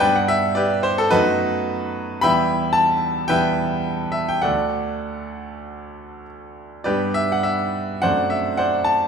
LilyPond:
<<
  \new Staff \with { instrumentName = "Grand piano" } { \time 4/4 \key g \major \tempo 4 = 107 <b' d'' g''>16 fis''16 e''8 <g' b' d''>8 c''16 a'16 <dis' fis' b'>2 | <e'' g'' b''>4 a''4 <b' e'' g''>4. e''16 g''16 | <a' d'' fis''>2. r4 | <g' b' d''>8 e''16 fis''16 e''4 <c'' d'' fis''>8 e''8 <c'' d'' fis''>8 a''8 | }
  \new Staff \with { instrumentName = "Grand piano" } { \time 4/4 \key g \major <g, g b d'>2 <fis, a b>2 | <e, g b e'>2 <e, g b e'>2 | <d, a d'>1 | <g, g b d'>2 <fis, a c' d'>2 | }
>>